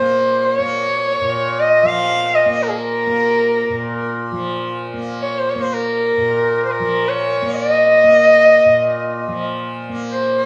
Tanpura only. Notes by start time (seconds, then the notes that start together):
Already playing: A#2 F3 A#3
0.59 A#3
1.21 A#2
1.83 F3
2.46 A#3
3.07 A#3
3.70 A#2
4.32 F3
4.94 A#3
5.55 A#3
6.17 A#2
6.79 F3
7.42 A#3
8.04 A#3
8.65 A#2
9.27 F3
9.89 A#3